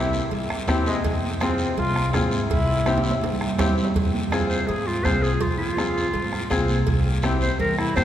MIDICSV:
0, 0, Header, 1, 7, 480
1, 0, Start_track
1, 0, Key_signature, -4, "minor"
1, 0, Tempo, 364520
1, 1368, Time_signature, 4, 2, 24, 8
1, 10588, End_track
2, 0, Start_track
2, 0, Title_t, "Clarinet"
2, 0, Program_c, 0, 71
2, 5912, Note_on_c, 0, 72, 73
2, 6151, Note_on_c, 0, 68, 81
2, 6171, Note_off_c, 0, 72, 0
2, 6408, Note_on_c, 0, 65, 86
2, 6428, Note_off_c, 0, 68, 0
2, 6637, Note_on_c, 0, 72, 81
2, 6657, Note_off_c, 0, 65, 0
2, 6881, Note_on_c, 0, 68, 79
2, 6900, Note_off_c, 0, 72, 0
2, 7122, Note_on_c, 0, 65, 88
2, 7142, Note_off_c, 0, 68, 0
2, 7339, Note_off_c, 0, 65, 0
2, 7346, Note_on_c, 0, 65, 89
2, 8754, Note_off_c, 0, 65, 0
2, 9757, Note_on_c, 0, 72, 74
2, 9996, Note_off_c, 0, 72, 0
2, 10008, Note_on_c, 0, 70, 91
2, 10241, Note_off_c, 0, 70, 0
2, 10248, Note_on_c, 0, 64, 96
2, 10476, Note_off_c, 0, 64, 0
2, 10484, Note_on_c, 0, 72, 91
2, 10588, Note_off_c, 0, 72, 0
2, 10588, End_track
3, 0, Start_track
3, 0, Title_t, "Upright piano"
3, 0, Program_c, 1, 0
3, 0, Note_on_c, 1, 60, 68
3, 0, Note_on_c, 1, 64, 62
3, 0, Note_on_c, 1, 67, 81
3, 258, Note_off_c, 1, 60, 0
3, 264, Note_off_c, 1, 64, 0
3, 265, Note_off_c, 1, 67, 0
3, 893, Note_on_c, 1, 60, 95
3, 904, Note_on_c, 1, 67, 97
3, 907, Note_on_c, 1, 64, 82
3, 1226, Note_off_c, 1, 60, 0
3, 1232, Note_off_c, 1, 67, 0
3, 1233, Note_off_c, 1, 64, 0
3, 1865, Note_on_c, 1, 60, 74
3, 1869, Note_on_c, 1, 65, 67
3, 1870, Note_on_c, 1, 68, 74
3, 2192, Note_off_c, 1, 60, 0
3, 2194, Note_off_c, 1, 65, 0
3, 2195, Note_off_c, 1, 68, 0
3, 2803, Note_on_c, 1, 60, 77
3, 2816, Note_on_c, 1, 68, 86
3, 2817, Note_on_c, 1, 65, 69
3, 3141, Note_off_c, 1, 60, 0
3, 3148, Note_off_c, 1, 65, 0
3, 3148, Note_off_c, 1, 68, 0
3, 3767, Note_on_c, 1, 60, 84
3, 3777, Note_on_c, 1, 64, 73
3, 3780, Note_on_c, 1, 67, 92
3, 4103, Note_off_c, 1, 60, 0
3, 4108, Note_off_c, 1, 64, 0
3, 4110, Note_off_c, 1, 67, 0
3, 4721, Note_on_c, 1, 60, 87
3, 4726, Note_on_c, 1, 64, 81
3, 4738, Note_on_c, 1, 67, 92
3, 5060, Note_off_c, 1, 60, 0
3, 5063, Note_off_c, 1, 64, 0
3, 5069, Note_off_c, 1, 67, 0
3, 5686, Note_on_c, 1, 60, 84
3, 5692, Note_on_c, 1, 68, 95
3, 5694, Note_on_c, 1, 65, 76
3, 6023, Note_off_c, 1, 60, 0
3, 6026, Note_off_c, 1, 68, 0
3, 6027, Note_off_c, 1, 65, 0
3, 6645, Note_on_c, 1, 60, 70
3, 6649, Note_on_c, 1, 65, 68
3, 6655, Note_on_c, 1, 68, 81
3, 6982, Note_off_c, 1, 60, 0
3, 6985, Note_off_c, 1, 65, 0
3, 6987, Note_off_c, 1, 68, 0
3, 7611, Note_on_c, 1, 60, 70
3, 7612, Note_on_c, 1, 65, 66
3, 7621, Note_on_c, 1, 68, 76
3, 7945, Note_off_c, 1, 60, 0
3, 7946, Note_off_c, 1, 65, 0
3, 7951, Note_off_c, 1, 68, 0
3, 8565, Note_on_c, 1, 65, 76
3, 8566, Note_on_c, 1, 60, 89
3, 8567, Note_on_c, 1, 68, 101
3, 8903, Note_off_c, 1, 60, 0
3, 8903, Note_off_c, 1, 65, 0
3, 8904, Note_off_c, 1, 68, 0
3, 9520, Note_on_c, 1, 64, 78
3, 9525, Note_on_c, 1, 60, 82
3, 9531, Note_on_c, 1, 67, 94
3, 9860, Note_off_c, 1, 64, 0
3, 9863, Note_off_c, 1, 60, 0
3, 9866, Note_off_c, 1, 67, 0
3, 10476, Note_on_c, 1, 60, 72
3, 10488, Note_on_c, 1, 67, 83
3, 10489, Note_on_c, 1, 64, 67
3, 10588, Note_off_c, 1, 60, 0
3, 10588, Note_off_c, 1, 64, 0
3, 10588, Note_off_c, 1, 67, 0
3, 10588, End_track
4, 0, Start_track
4, 0, Title_t, "Trombone"
4, 0, Program_c, 2, 57
4, 0, Note_on_c, 2, 64, 97
4, 378, Note_off_c, 2, 64, 0
4, 1144, Note_on_c, 2, 56, 101
4, 1583, Note_off_c, 2, 56, 0
4, 1866, Note_on_c, 2, 60, 100
4, 2304, Note_off_c, 2, 60, 0
4, 2353, Note_on_c, 2, 65, 111
4, 2788, Note_off_c, 2, 65, 0
4, 2817, Note_on_c, 2, 65, 94
4, 2923, Note_off_c, 2, 65, 0
4, 3042, Note_on_c, 2, 64, 111
4, 4672, Note_off_c, 2, 64, 0
4, 10588, End_track
5, 0, Start_track
5, 0, Title_t, "Upright bass"
5, 0, Program_c, 3, 32
5, 0, Note_on_c, 3, 36, 91
5, 223, Note_off_c, 3, 36, 0
5, 421, Note_on_c, 3, 43, 86
5, 907, Note_off_c, 3, 43, 0
5, 907, Note_on_c, 3, 40, 102
5, 1283, Note_off_c, 3, 40, 0
5, 1386, Note_on_c, 3, 41, 96
5, 2147, Note_off_c, 3, 41, 0
5, 2334, Note_on_c, 3, 36, 93
5, 2828, Note_on_c, 3, 44, 104
5, 2848, Note_off_c, 3, 36, 0
5, 3204, Note_off_c, 3, 44, 0
5, 3302, Note_on_c, 3, 36, 98
5, 4064, Note_off_c, 3, 36, 0
5, 4247, Note_on_c, 3, 43, 89
5, 4729, Note_off_c, 3, 43, 0
5, 4729, Note_on_c, 3, 40, 102
5, 5112, Note_off_c, 3, 40, 0
5, 5212, Note_on_c, 3, 41, 96
5, 5978, Note_off_c, 3, 41, 0
5, 6178, Note_on_c, 3, 44, 96
5, 6558, Note_off_c, 3, 44, 0
5, 6658, Note_on_c, 3, 36, 97
5, 7038, Note_off_c, 3, 36, 0
5, 7140, Note_on_c, 3, 41, 99
5, 7904, Note_off_c, 3, 41, 0
5, 8091, Note_on_c, 3, 44, 91
5, 8474, Note_off_c, 3, 44, 0
5, 8577, Note_on_c, 3, 36, 101
5, 8957, Note_off_c, 3, 36, 0
5, 9056, Note_on_c, 3, 36, 93
5, 9821, Note_off_c, 3, 36, 0
5, 10003, Note_on_c, 3, 40, 104
5, 10390, Note_off_c, 3, 40, 0
5, 10495, Note_on_c, 3, 43, 105
5, 10588, Note_off_c, 3, 43, 0
5, 10588, End_track
6, 0, Start_track
6, 0, Title_t, "Two-headed folk drums"
6, 662, Note_on_c, 9, 37, 74
6, 794, Note_off_c, 9, 37, 0
6, 900, Note_on_c, 9, 36, 79
6, 907, Note_on_c, 9, 37, 78
6, 1032, Note_off_c, 9, 36, 0
6, 1038, Note_off_c, 9, 37, 0
6, 1381, Note_on_c, 9, 36, 81
6, 1513, Note_off_c, 9, 36, 0
6, 1860, Note_on_c, 9, 37, 85
6, 1991, Note_off_c, 9, 37, 0
6, 2581, Note_on_c, 9, 37, 71
6, 2712, Note_off_c, 9, 37, 0
6, 2818, Note_on_c, 9, 37, 80
6, 2820, Note_on_c, 9, 36, 81
6, 2950, Note_off_c, 9, 37, 0
6, 2951, Note_off_c, 9, 36, 0
6, 3299, Note_on_c, 9, 36, 80
6, 3430, Note_off_c, 9, 36, 0
6, 3769, Note_on_c, 9, 37, 83
6, 3900, Note_off_c, 9, 37, 0
6, 4492, Note_on_c, 9, 37, 71
6, 4623, Note_off_c, 9, 37, 0
6, 4728, Note_on_c, 9, 37, 73
6, 4729, Note_on_c, 9, 36, 78
6, 4860, Note_off_c, 9, 37, 0
6, 4861, Note_off_c, 9, 36, 0
6, 5208, Note_on_c, 9, 36, 76
6, 5339, Note_off_c, 9, 36, 0
6, 5692, Note_on_c, 9, 37, 87
6, 5824, Note_off_c, 9, 37, 0
6, 6653, Note_on_c, 9, 36, 78
6, 6654, Note_on_c, 9, 37, 75
6, 6784, Note_off_c, 9, 36, 0
6, 6785, Note_off_c, 9, 37, 0
6, 7134, Note_on_c, 9, 36, 77
6, 7266, Note_off_c, 9, 36, 0
6, 7617, Note_on_c, 9, 37, 79
6, 7748, Note_off_c, 9, 37, 0
6, 8331, Note_on_c, 9, 37, 67
6, 8463, Note_off_c, 9, 37, 0
6, 8573, Note_on_c, 9, 36, 73
6, 8577, Note_on_c, 9, 37, 73
6, 8705, Note_off_c, 9, 36, 0
6, 8709, Note_off_c, 9, 37, 0
6, 9051, Note_on_c, 9, 36, 81
6, 9183, Note_off_c, 9, 36, 0
6, 9530, Note_on_c, 9, 37, 85
6, 9662, Note_off_c, 9, 37, 0
6, 10252, Note_on_c, 9, 37, 77
6, 10383, Note_off_c, 9, 37, 0
6, 10492, Note_on_c, 9, 36, 76
6, 10497, Note_on_c, 9, 37, 79
6, 10588, Note_off_c, 9, 36, 0
6, 10588, Note_off_c, 9, 37, 0
6, 10588, End_track
7, 0, Start_track
7, 0, Title_t, "Drums"
7, 173, Note_on_c, 9, 73, 69
7, 305, Note_off_c, 9, 73, 0
7, 411, Note_on_c, 9, 56, 77
7, 413, Note_on_c, 9, 64, 79
7, 414, Note_on_c, 9, 74, 73
7, 543, Note_off_c, 9, 56, 0
7, 545, Note_off_c, 9, 64, 0
7, 546, Note_off_c, 9, 74, 0
7, 657, Note_on_c, 9, 63, 31
7, 789, Note_off_c, 9, 63, 0
7, 886, Note_on_c, 9, 63, 87
7, 886, Note_on_c, 9, 64, 70
7, 888, Note_on_c, 9, 73, 71
7, 895, Note_on_c, 9, 66, 70
7, 1018, Note_off_c, 9, 63, 0
7, 1018, Note_off_c, 9, 64, 0
7, 1019, Note_off_c, 9, 73, 0
7, 1027, Note_off_c, 9, 66, 0
7, 1134, Note_on_c, 9, 63, 76
7, 1137, Note_on_c, 9, 73, 74
7, 1266, Note_off_c, 9, 63, 0
7, 1268, Note_off_c, 9, 73, 0
7, 1374, Note_on_c, 9, 74, 69
7, 1375, Note_on_c, 9, 56, 97
7, 1386, Note_on_c, 9, 63, 32
7, 1506, Note_off_c, 9, 74, 0
7, 1507, Note_off_c, 9, 56, 0
7, 1517, Note_off_c, 9, 63, 0
7, 1633, Note_on_c, 9, 63, 68
7, 1764, Note_off_c, 9, 63, 0
7, 1848, Note_on_c, 9, 73, 73
7, 1867, Note_on_c, 9, 63, 102
7, 1980, Note_off_c, 9, 73, 0
7, 1998, Note_off_c, 9, 63, 0
7, 2083, Note_on_c, 9, 73, 72
7, 2214, Note_off_c, 9, 73, 0
7, 2337, Note_on_c, 9, 64, 85
7, 2339, Note_on_c, 9, 74, 75
7, 2340, Note_on_c, 9, 56, 82
7, 2468, Note_off_c, 9, 64, 0
7, 2470, Note_off_c, 9, 74, 0
7, 2472, Note_off_c, 9, 56, 0
7, 2579, Note_on_c, 9, 63, 32
7, 2711, Note_off_c, 9, 63, 0
7, 2810, Note_on_c, 9, 73, 70
7, 2822, Note_on_c, 9, 66, 68
7, 2833, Note_on_c, 9, 63, 83
7, 2833, Note_on_c, 9, 64, 69
7, 2942, Note_off_c, 9, 73, 0
7, 2954, Note_off_c, 9, 66, 0
7, 2965, Note_off_c, 9, 63, 0
7, 2965, Note_off_c, 9, 64, 0
7, 3046, Note_on_c, 9, 73, 75
7, 3055, Note_on_c, 9, 63, 71
7, 3178, Note_off_c, 9, 73, 0
7, 3186, Note_off_c, 9, 63, 0
7, 3292, Note_on_c, 9, 74, 70
7, 3300, Note_on_c, 9, 63, 34
7, 3303, Note_on_c, 9, 56, 106
7, 3424, Note_off_c, 9, 74, 0
7, 3431, Note_off_c, 9, 63, 0
7, 3434, Note_off_c, 9, 56, 0
7, 3761, Note_on_c, 9, 63, 103
7, 3769, Note_on_c, 9, 65, 69
7, 3769, Note_on_c, 9, 73, 68
7, 3892, Note_off_c, 9, 63, 0
7, 3900, Note_off_c, 9, 73, 0
7, 3901, Note_off_c, 9, 65, 0
7, 3918, Note_on_c, 9, 65, 89
7, 3920, Note_on_c, 9, 63, 74
7, 4000, Note_on_c, 9, 73, 71
7, 4050, Note_off_c, 9, 65, 0
7, 4052, Note_off_c, 9, 63, 0
7, 4079, Note_on_c, 9, 63, 87
7, 4093, Note_on_c, 9, 66, 76
7, 4132, Note_off_c, 9, 73, 0
7, 4211, Note_off_c, 9, 63, 0
7, 4224, Note_off_c, 9, 66, 0
7, 4232, Note_on_c, 9, 74, 75
7, 4242, Note_on_c, 9, 63, 74
7, 4262, Note_on_c, 9, 56, 77
7, 4262, Note_on_c, 9, 65, 81
7, 4364, Note_off_c, 9, 74, 0
7, 4374, Note_off_c, 9, 63, 0
7, 4388, Note_on_c, 9, 64, 89
7, 4394, Note_off_c, 9, 56, 0
7, 4394, Note_off_c, 9, 65, 0
7, 4519, Note_off_c, 9, 64, 0
7, 4555, Note_on_c, 9, 64, 95
7, 4686, Note_off_c, 9, 64, 0
7, 4717, Note_on_c, 9, 64, 102
7, 4721, Note_on_c, 9, 73, 76
7, 4730, Note_on_c, 9, 66, 95
7, 4849, Note_off_c, 9, 64, 0
7, 4853, Note_off_c, 9, 73, 0
7, 4862, Note_off_c, 9, 66, 0
7, 4881, Note_on_c, 9, 64, 90
7, 4973, Note_on_c, 9, 73, 65
7, 5013, Note_off_c, 9, 64, 0
7, 5036, Note_on_c, 9, 64, 92
7, 5060, Note_on_c, 9, 66, 76
7, 5104, Note_off_c, 9, 73, 0
7, 5168, Note_off_c, 9, 64, 0
7, 5191, Note_off_c, 9, 66, 0
7, 5192, Note_on_c, 9, 74, 66
7, 5205, Note_on_c, 9, 63, 33
7, 5205, Note_on_c, 9, 64, 69
7, 5215, Note_on_c, 9, 56, 94
7, 5324, Note_off_c, 9, 74, 0
7, 5337, Note_off_c, 9, 63, 0
7, 5337, Note_off_c, 9, 64, 0
7, 5346, Note_off_c, 9, 56, 0
7, 5439, Note_on_c, 9, 63, 69
7, 5570, Note_off_c, 9, 63, 0
7, 5674, Note_on_c, 9, 63, 90
7, 5695, Note_on_c, 9, 73, 68
7, 5806, Note_off_c, 9, 63, 0
7, 5827, Note_off_c, 9, 73, 0
7, 5925, Note_on_c, 9, 73, 70
7, 6056, Note_off_c, 9, 73, 0
7, 6153, Note_on_c, 9, 64, 79
7, 6170, Note_on_c, 9, 56, 75
7, 6176, Note_on_c, 9, 74, 66
7, 6285, Note_off_c, 9, 64, 0
7, 6302, Note_off_c, 9, 56, 0
7, 6308, Note_off_c, 9, 74, 0
7, 6396, Note_on_c, 9, 63, 32
7, 6527, Note_off_c, 9, 63, 0
7, 6641, Note_on_c, 9, 63, 82
7, 6641, Note_on_c, 9, 64, 68
7, 6649, Note_on_c, 9, 73, 67
7, 6773, Note_off_c, 9, 63, 0
7, 6773, Note_off_c, 9, 64, 0
7, 6780, Note_off_c, 9, 73, 0
7, 6897, Note_on_c, 9, 73, 69
7, 7029, Note_off_c, 9, 73, 0
7, 7118, Note_on_c, 9, 56, 103
7, 7121, Note_on_c, 9, 63, 33
7, 7121, Note_on_c, 9, 64, 66
7, 7128, Note_on_c, 9, 74, 65
7, 7250, Note_off_c, 9, 56, 0
7, 7253, Note_off_c, 9, 63, 0
7, 7253, Note_off_c, 9, 64, 0
7, 7260, Note_off_c, 9, 74, 0
7, 7600, Note_on_c, 9, 63, 92
7, 7618, Note_on_c, 9, 73, 70
7, 7731, Note_off_c, 9, 63, 0
7, 7750, Note_off_c, 9, 73, 0
7, 7868, Note_on_c, 9, 73, 68
7, 8000, Note_off_c, 9, 73, 0
7, 8079, Note_on_c, 9, 56, 76
7, 8082, Note_on_c, 9, 64, 77
7, 8101, Note_on_c, 9, 74, 71
7, 8211, Note_off_c, 9, 56, 0
7, 8214, Note_off_c, 9, 64, 0
7, 8232, Note_off_c, 9, 74, 0
7, 8320, Note_on_c, 9, 63, 32
7, 8451, Note_off_c, 9, 63, 0
7, 8558, Note_on_c, 9, 63, 78
7, 8559, Note_on_c, 9, 73, 74
7, 8690, Note_off_c, 9, 63, 0
7, 8691, Note_off_c, 9, 73, 0
7, 8801, Note_on_c, 9, 73, 64
7, 8803, Note_on_c, 9, 63, 70
7, 8933, Note_off_c, 9, 73, 0
7, 8935, Note_off_c, 9, 63, 0
7, 9042, Note_on_c, 9, 56, 98
7, 9042, Note_on_c, 9, 74, 69
7, 9056, Note_on_c, 9, 63, 31
7, 9056, Note_on_c, 9, 64, 70
7, 9173, Note_off_c, 9, 56, 0
7, 9174, Note_off_c, 9, 74, 0
7, 9187, Note_off_c, 9, 63, 0
7, 9187, Note_off_c, 9, 64, 0
7, 9508, Note_on_c, 9, 73, 70
7, 9526, Note_on_c, 9, 63, 93
7, 9639, Note_off_c, 9, 73, 0
7, 9657, Note_off_c, 9, 63, 0
7, 9756, Note_on_c, 9, 73, 71
7, 9888, Note_off_c, 9, 73, 0
7, 10000, Note_on_c, 9, 56, 74
7, 10004, Note_on_c, 9, 64, 85
7, 10010, Note_on_c, 9, 74, 68
7, 10132, Note_off_c, 9, 56, 0
7, 10135, Note_off_c, 9, 64, 0
7, 10141, Note_off_c, 9, 74, 0
7, 10254, Note_on_c, 9, 63, 35
7, 10386, Note_off_c, 9, 63, 0
7, 10481, Note_on_c, 9, 66, 71
7, 10482, Note_on_c, 9, 63, 84
7, 10490, Note_on_c, 9, 73, 73
7, 10588, Note_off_c, 9, 63, 0
7, 10588, Note_off_c, 9, 66, 0
7, 10588, Note_off_c, 9, 73, 0
7, 10588, End_track
0, 0, End_of_file